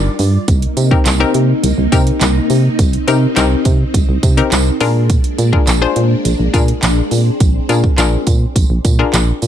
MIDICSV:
0, 0, Header, 1, 5, 480
1, 0, Start_track
1, 0, Tempo, 576923
1, 400, Time_signature, 4, 2, 24, 8
1, 7880, End_track
2, 0, Start_track
2, 0, Title_t, "Synth pluck"
2, 0, Program_c, 0, 84
2, 0, Note_on_c, 0, 62, 96
2, 0, Note_on_c, 0, 63, 90
2, 0, Note_on_c, 0, 67, 89
2, 0, Note_on_c, 0, 70, 108
2, 398, Note_off_c, 0, 62, 0
2, 399, Note_off_c, 0, 63, 0
2, 400, Note_off_c, 0, 67, 0
2, 400, Note_off_c, 0, 70, 0
2, 758, Note_on_c, 0, 60, 88
2, 759, Note_on_c, 0, 63, 80
2, 760, Note_on_c, 0, 67, 78
2, 761, Note_on_c, 0, 70, 95
2, 944, Note_off_c, 0, 60, 0
2, 944, Note_off_c, 0, 63, 0
2, 945, Note_off_c, 0, 67, 0
2, 946, Note_off_c, 0, 70, 0
2, 998, Note_on_c, 0, 60, 100
2, 999, Note_on_c, 0, 63, 89
2, 1000, Note_on_c, 0, 67, 89
2, 1002, Note_on_c, 0, 70, 109
2, 1462, Note_off_c, 0, 60, 0
2, 1462, Note_off_c, 0, 63, 0
2, 1463, Note_off_c, 0, 67, 0
2, 1464, Note_off_c, 0, 70, 0
2, 1598, Note_on_c, 0, 60, 98
2, 1600, Note_on_c, 0, 63, 86
2, 1601, Note_on_c, 0, 67, 88
2, 1603, Note_on_c, 0, 70, 103
2, 2339, Note_off_c, 0, 60, 0
2, 2340, Note_off_c, 0, 63, 0
2, 2341, Note_off_c, 0, 67, 0
2, 2342, Note_off_c, 0, 70, 0
2, 2558, Note_on_c, 0, 60, 87
2, 2560, Note_on_c, 0, 63, 81
2, 2561, Note_on_c, 0, 67, 80
2, 2563, Note_on_c, 0, 70, 99
2, 2744, Note_off_c, 0, 60, 0
2, 2745, Note_off_c, 0, 63, 0
2, 2745, Note_off_c, 0, 67, 0
2, 2746, Note_off_c, 0, 70, 0
2, 2797, Note_on_c, 0, 60, 91
2, 2799, Note_on_c, 0, 63, 86
2, 2800, Note_on_c, 0, 67, 82
2, 2801, Note_on_c, 0, 70, 99
2, 3446, Note_off_c, 0, 60, 0
2, 3447, Note_off_c, 0, 63, 0
2, 3448, Note_off_c, 0, 67, 0
2, 3448, Note_off_c, 0, 70, 0
2, 3637, Note_on_c, 0, 60, 93
2, 3639, Note_on_c, 0, 63, 93
2, 3639, Note_on_c, 0, 67, 92
2, 3641, Note_on_c, 0, 70, 108
2, 3992, Note_off_c, 0, 70, 0
2, 3998, Note_on_c, 0, 62, 98
2, 3999, Note_off_c, 0, 60, 0
2, 3999, Note_off_c, 0, 63, 0
2, 3999, Note_on_c, 0, 65, 90
2, 4000, Note_off_c, 0, 67, 0
2, 4001, Note_on_c, 0, 68, 88
2, 4002, Note_on_c, 0, 70, 104
2, 4479, Note_off_c, 0, 62, 0
2, 4479, Note_off_c, 0, 65, 0
2, 4480, Note_off_c, 0, 68, 0
2, 4481, Note_off_c, 0, 70, 0
2, 4597, Note_on_c, 0, 62, 84
2, 4598, Note_on_c, 0, 65, 79
2, 4600, Note_on_c, 0, 68, 80
2, 4601, Note_on_c, 0, 70, 89
2, 4784, Note_off_c, 0, 62, 0
2, 4784, Note_off_c, 0, 65, 0
2, 4785, Note_off_c, 0, 68, 0
2, 4786, Note_off_c, 0, 70, 0
2, 4838, Note_on_c, 0, 62, 97
2, 4839, Note_on_c, 0, 65, 90
2, 4840, Note_on_c, 0, 68, 91
2, 4842, Note_on_c, 0, 72, 111
2, 5302, Note_off_c, 0, 62, 0
2, 5302, Note_off_c, 0, 65, 0
2, 5303, Note_off_c, 0, 68, 0
2, 5304, Note_off_c, 0, 72, 0
2, 5437, Note_on_c, 0, 62, 93
2, 5438, Note_on_c, 0, 65, 85
2, 5440, Note_on_c, 0, 68, 91
2, 5441, Note_on_c, 0, 70, 105
2, 6179, Note_off_c, 0, 62, 0
2, 6179, Note_off_c, 0, 65, 0
2, 6180, Note_off_c, 0, 68, 0
2, 6181, Note_off_c, 0, 70, 0
2, 6399, Note_on_c, 0, 62, 85
2, 6400, Note_on_c, 0, 65, 81
2, 6401, Note_on_c, 0, 68, 82
2, 6403, Note_on_c, 0, 70, 95
2, 6585, Note_off_c, 0, 62, 0
2, 6585, Note_off_c, 0, 65, 0
2, 6586, Note_off_c, 0, 68, 0
2, 6587, Note_off_c, 0, 70, 0
2, 6637, Note_on_c, 0, 62, 90
2, 6638, Note_on_c, 0, 65, 83
2, 6640, Note_on_c, 0, 68, 85
2, 6641, Note_on_c, 0, 70, 105
2, 7286, Note_off_c, 0, 62, 0
2, 7287, Note_off_c, 0, 65, 0
2, 7287, Note_off_c, 0, 68, 0
2, 7288, Note_off_c, 0, 70, 0
2, 7478, Note_on_c, 0, 62, 97
2, 7480, Note_on_c, 0, 65, 87
2, 7481, Note_on_c, 0, 68, 86
2, 7482, Note_on_c, 0, 70, 109
2, 7880, Note_off_c, 0, 62, 0
2, 7880, Note_off_c, 0, 65, 0
2, 7880, Note_off_c, 0, 68, 0
2, 7880, Note_off_c, 0, 70, 0
2, 7880, End_track
3, 0, Start_track
3, 0, Title_t, "String machine"
3, 0, Program_c, 1, 50
3, 0, Note_on_c, 1, 55, 85
3, 0, Note_on_c, 1, 65, 92
3, 0, Note_on_c, 1, 74, 77
3, 367, Note_off_c, 1, 55, 0
3, 367, Note_off_c, 1, 65, 0
3, 367, Note_off_c, 1, 74, 0
3, 399, Note_on_c, 1, 63, 94
3, 400, Note_on_c, 1, 48, 86
3, 400, Note_on_c, 1, 58, 78
3, 2301, Note_off_c, 1, 58, 0
3, 2320, Note_on_c, 1, 60, 77
3, 3966, Note_off_c, 1, 48, 0
3, 3966, Note_off_c, 1, 63, 0
3, 3983, Note_off_c, 1, 60, 0
3, 3999, Note_on_c, 1, 56, 83
3, 3999, Note_on_c, 1, 58, 72
3, 3999, Note_on_c, 1, 62, 93
3, 5900, Note_off_c, 1, 58, 0
3, 5920, Note_on_c, 1, 60, 73
3, 7880, Note_off_c, 1, 56, 0
3, 7880, Note_off_c, 1, 60, 0
3, 7880, Note_off_c, 1, 62, 0
3, 7880, End_track
4, 0, Start_track
4, 0, Title_t, "FM bass"
4, 0, Program_c, 2, 39
4, 160, Note_on_c, 2, 43, 105
4, 316, Note_off_c, 2, 43, 0
4, 400, Note_on_c, 2, 36, 115
4, 556, Note_off_c, 2, 36, 0
4, 639, Note_on_c, 2, 48, 98
4, 795, Note_off_c, 2, 48, 0
4, 880, Note_on_c, 2, 36, 108
4, 1036, Note_off_c, 2, 36, 0
4, 1119, Note_on_c, 2, 48, 100
4, 1275, Note_off_c, 2, 48, 0
4, 1359, Note_on_c, 2, 36, 111
4, 1437, Note_off_c, 2, 36, 0
4, 1479, Note_on_c, 2, 36, 100
4, 1557, Note_off_c, 2, 36, 0
4, 1600, Note_on_c, 2, 48, 96
4, 1756, Note_off_c, 2, 48, 0
4, 1840, Note_on_c, 2, 36, 110
4, 1996, Note_off_c, 2, 36, 0
4, 2079, Note_on_c, 2, 48, 98
4, 2235, Note_off_c, 2, 48, 0
4, 2321, Note_on_c, 2, 36, 118
4, 2477, Note_off_c, 2, 36, 0
4, 2560, Note_on_c, 2, 48, 108
4, 2716, Note_off_c, 2, 48, 0
4, 2800, Note_on_c, 2, 36, 107
4, 2956, Note_off_c, 2, 36, 0
4, 3039, Note_on_c, 2, 48, 108
4, 3196, Note_off_c, 2, 48, 0
4, 3279, Note_on_c, 2, 36, 109
4, 3357, Note_off_c, 2, 36, 0
4, 3400, Note_on_c, 2, 36, 102
4, 3478, Note_off_c, 2, 36, 0
4, 3519, Note_on_c, 2, 48, 102
4, 3676, Note_off_c, 2, 48, 0
4, 3759, Note_on_c, 2, 36, 95
4, 3916, Note_off_c, 2, 36, 0
4, 4000, Note_on_c, 2, 46, 99
4, 4312, Note_off_c, 2, 46, 0
4, 4480, Note_on_c, 2, 46, 106
4, 4636, Note_off_c, 2, 46, 0
4, 4720, Note_on_c, 2, 34, 102
4, 4876, Note_off_c, 2, 34, 0
4, 4960, Note_on_c, 2, 46, 108
4, 5116, Note_off_c, 2, 46, 0
4, 5200, Note_on_c, 2, 34, 106
4, 5278, Note_off_c, 2, 34, 0
4, 5320, Note_on_c, 2, 34, 97
4, 5398, Note_off_c, 2, 34, 0
4, 5439, Note_on_c, 2, 46, 107
4, 5596, Note_off_c, 2, 46, 0
4, 5679, Note_on_c, 2, 34, 109
4, 5835, Note_off_c, 2, 34, 0
4, 5919, Note_on_c, 2, 46, 94
4, 6075, Note_off_c, 2, 46, 0
4, 6161, Note_on_c, 2, 34, 104
4, 6317, Note_off_c, 2, 34, 0
4, 6399, Note_on_c, 2, 46, 100
4, 6555, Note_off_c, 2, 46, 0
4, 6638, Note_on_c, 2, 34, 104
4, 6795, Note_off_c, 2, 34, 0
4, 6879, Note_on_c, 2, 46, 96
4, 7035, Note_off_c, 2, 46, 0
4, 7120, Note_on_c, 2, 34, 104
4, 7198, Note_off_c, 2, 34, 0
4, 7238, Note_on_c, 2, 34, 100
4, 7317, Note_off_c, 2, 34, 0
4, 7360, Note_on_c, 2, 46, 90
4, 7516, Note_off_c, 2, 46, 0
4, 7599, Note_on_c, 2, 34, 108
4, 7755, Note_off_c, 2, 34, 0
4, 7840, Note_on_c, 2, 46, 94
4, 7880, Note_off_c, 2, 46, 0
4, 7880, End_track
5, 0, Start_track
5, 0, Title_t, "Drums"
5, 158, Note_on_c, 9, 46, 74
5, 158, Note_on_c, 9, 54, 48
5, 241, Note_off_c, 9, 46, 0
5, 241, Note_off_c, 9, 54, 0
5, 398, Note_on_c, 9, 54, 33
5, 400, Note_on_c, 9, 36, 122
5, 400, Note_on_c, 9, 42, 90
5, 482, Note_off_c, 9, 54, 0
5, 483, Note_off_c, 9, 36, 0
5, 483, Note_off_c, 9, 42, 0
5, 519, Note_on_c, 9, 42, 54
5, 602, Note_off_c, 9, 42, 0
5, 639, Note_on_c, 9, 42, 69
5, 639, Note_on_c, 9, 54, 51
5, 722, Note_off_c, 9, 54, 0
5, 723, Note_off_c, 9, 42, 0
5, 760, Note_on_c, 9, 36, 94
5, 843, Note_off_c, 9, 36, 0
5, 877, Note_on_c, 9, 54, 87
5, 879, Note_on_c, 9, 42, 75
5, 880, Note_on_c, 9, 39, 117
5, 961, Note_off_c, 9, 54, 0
5, 962, Note_off_c, 9, 42, 0
5, 963, Note_off_c, 9, 39, 0
5, 1118, Note_on_c, 9, 42, 84
5, 1201, Note_off_c, 9, 42, 0
5, 1360, Note_on_c, 9, 54, 45
5, 1361, Note_on_c, 9, 42, 105
5, 1443, Note_off_c, 9, 54, 0
5, 1444, Note_off_c, 9, 42, 0
5, 1599, Note_on_c, 9, 42, 67
5, 1599, Note_on_c, 9, 54, 49
5, 1600, Note_on_c, 9, 36, 90
5, 1682, Note_off_c, 9, 54, 0
5, 1683, Note_off_c, 9, 36, 0
5, 1683, Note_off_c, 9, 42, 0
5, 1720, Note_on_c, 9, 42, 57
5, 1804, Note_off_c, 9, 42, 0
5, 1839, Note_on_c, 9, 54, 93
5, 1840, Note_on_c, 9, 39, 121
5, 1842, Note_on_c, 9, 42, 79
5, 1922, Note_off_c, 9, 54, 0
5, 1923, Note_off_c, 9, 39, 0
5, 1925, Note_off_c, 9, 42, 0
5, 2078, Note_on_c, 9, 46, 73
5, 2078, Note_on_c, 9, 54, 52
5, 2161, Note_off_c, 9, 46, 0
5, 2161, Note_off_c, 9, 54, 0
5, 2320, Note_on_c, 9, 42, 85
5, 2320, Note_on_c, 9, 54, 34
5, 2321, Note_on_c, 9, 36, 127
5, 2403, Note_off_c, 9, 54, 0
5, 2404, Note_off_c, 9, 36, 0
5, 2404, Note_off_c, 9, 42, 0
5, 2440, Note_on_c, 9, 42, 56
5, 2523, Note_off_c, 9, 42, 0
5, 2560, Note_on_c, 9, 42, 73
5, 2561, Note_on_c, 9, 54, 53
5, 2643, Note_off_c, 9, 42, 0
5, 2644, Note_off_c, 9, 54, 0
5, 2799, Note_on_c, 9, 42, 78
5, 2800, Note_on_c, 9, 39, 120
5, 2800, Note_on_c, 9, 54, 92
5, 2882, Note_off_c, 9, 42, 0
5, 2883, Note_off_c, 9, 39, 0
5, 2883, Note_off_c, 9, 54, 0
5, 3038, Note_on_c, 9, 42, 82
5, 3039, Note_on_c, 9, 36, 93
5, 3040, Note_on_c, 9, 54, 37
5, 3121, Note_off_c, 9, 42, 0
5, 3123, Note_off_c, 9, 36, 0
5, 3123, Note_off_c, 9, 54, 0
5, 3279, Note_on_c, 9, 36, 101
5, 3281, Note_on_c, 9, 54, 42
5, 3282, Note_on_c, 9, 42, 107
5, 3363, Note_off_c, 9, 36, 0
5, 3364, Note_off_c, 9, 54, 0
5, 3365, Note_off_c, 9, 42, 0
5, 3520, Note_on_c, 9, 36, 97
5, 3520, Note_on_c, 9, 42, 65
5, 3520, Note_on_c, 9, 54, 52
5, 3603, Note_off_c, 9, 36, 0
5, 3603, Note_off_c, 9, 42, 0
5, 3603, Note_off_c, 9, 54, 0
5, 3640, Note_on_c, 9, 42, 54
5, 3723, Note_off_c, 9, 42, 0
5, 3759, Note_on_c, 9, 39, 117
5, 3759, Note_on_c, 9, 54, 93
5, 3761, Note_on_c, 9, 42, 80
5, 3842, Note_off_c, 9, 39, 0
5, 3842, Note_off_c, 9, 54, 0
5, 3844, Note_off_c, 9, 42, 0
5, 3998, Note_on_c, 9, 46, 74
5, 3999, Note_on_c, 9, 54, 50
5, 4081, Note_off_c, 9, 46, 0
5, 4082, Note_off_c, 9, 54, 0
5, 4240, Note_on_c, 9, 36, 123
5, 4240, Note_on_c, 9, 42, 89
5, 4240, Note_on_c, 9, 54, 34
5, 4323, Note_off_c, 9, 42, 0
5, 4323, Note_off_c, 9, 54, 0
5, 4324, Note_off_c, 9, 36, 0
5, 4360, Note_on_c, 9, 42, 54
5, 4443, Note_off_c, 9, 42, 0
5, 4480, Note_on_c, 9, 42, 70
5, 4480, Note_on_c, 9, 54, 53
5, 4563, Note_off_c, 9, 54, 0
5, 4564, Note_off_c, 9, 42, 0
5, 4600, Note_on_c, 9, 36, 94
5, 4683, Note_off_c, 9, 36, 0
5, 4719, Note_on_c, 9, 54, 88
5, 4720, Note_on_c, 9, 42, 78
5, 4721, Note_on_c, 9, 39, 118
5, 4802, Note_off_c, 9, 54, 0
5, 4803, Note_off_c, 9, 42, 0
5, 4804, Note_off_c, 9, 39, 0
5, 4959, Note_on_c, 9, 42, 83
5, 5042, Note_off_c, 9, 42, 0
5, 5200, Note_on_c, 9, 54, 44
5, 5201, Note_on_c, 9, 42, 106
5, 5283, Note_off_c, 9, 54, 0
5, 5284, Note_off_c, 9, 42, 0
5, 5439, Note_on_c, 9, 36, 91
5, 5440, Note_on_c, 9, 42, 68
5, 5440, Note_on_c, 9, 54, 50
5, 5523, Note_off_c, 9, 36, 0
5, 5523, Note_off_c, 9, 42, 0
5, 5523, Note_off_c, 9, 54, 0
5, 5560, Note_on_c, 9, 42, 56
5, 5643, Note_off_c, 9, 42, 0
5, 5678, Note_on_c, 9, 54, 90
5, 5679, Note_on_c, 9, 39, 120
5, 5681, Note_on_c, 9, 42, 80
5, 5762, Note_off_c, 9, 39, 0
5, 5762, Note_off_c, 9, 54, 0
5, 5764, Note_off_c, 9, 42, 0
5, 5918, Note_on_c, 9, 46, 74
5, 5918, Note_on_c, 9, 54, 51
5, 6001, Note_off_c, 9, 46, 0
5, 6001, Note_off_c, 9, 54, 0
5, 6159, Note_on_c, 9, 54, 34
5, 6160, Note_on_c, 9, 36, 120
5, 6160, Note_on_c, 9, 42, 89
5, 6242, Note_off_c, 9, 54, 0
5, 6243, Note_off_c, 9, 36, 0
5, 6243, Note_off_c, 9, 42, 0
5, 6399, Note_on_c, 9, 42, 69
5, 6400, Note_on_c, 9, 54, 52
5, 6483, Note_off_c, 9, 42, 0
5, 6483, Note_off_c, 9, 54, 0
5, 6520, Note_on_c, 9, 36, 91
5, 6603, Note_off_c, 9, 36, 0
5, 6638, Note_on_c, 9, 54, 90
5, 6639, Note_on_c, 9, 42, 78
5, 6640, Note_on_c, 9, 39, 119
5, 6721, Note_off_c, 9, 54, 0
5, 6722, Note_off_c, 9, 42, 0
5, 6723, Note_off_c, 9, 39, 0
5, 6878, Note_on_c, 9, 42, 84
5, 6879, Note_on_c, 9, 36, 97
5, 6879, Note_on_c, 9, 54, 35
5, 6962, Note_off_c, 9, 42, 0
5, 6963, Note_off_c, 9, 36, 0
5, 6963, Note_off_c, 9, 54, 0
5, 7119, Note_on_c, 9, 36, 96
5, 7120, Note_on_c, 9, 54, 46
5, 7122, Note_on_c, 9, 42, 110
5, 7203, Note_off_c, 9, 36, 0
5, 7203, Note_off_c, 9, 54, 0
5, 7205, Note_off_c, 9, 42, 0
5, 7360, Note_on_c, 9, 36, 96
5, 7360, Note_on_c, 9, 42, 66
5, 7360, Note_on_c, 9, 54, 50
5, 7443, Note_off_c, 9, 36, 0
5, 7443, Note_off_c, 9, 42, 0
5, 7443, Note_off_c, 9, 54, 0
5, 7600, Note_on_c, 9, 39, 116
5, 7600, Note_on_c, 9, 54, 95
5, 7602, Note_on_c, 9, 42, 83
5, 7683, Note_off_c, 9, 39, 0
5, 7683, Note_off_c, 9, 54, 0
5, 7685, Note_off_c, 9, 42, 0
5, 7838, Note_on_c, 9, 46, 75
5, 7839, Note_on_c, 9, 54, 49
5, 7880, Note_off_c, 9, 46, 0
5, 7880, Note_off_c, 9, 54, 0
5, 7880, End_track
0, 0, End_of_file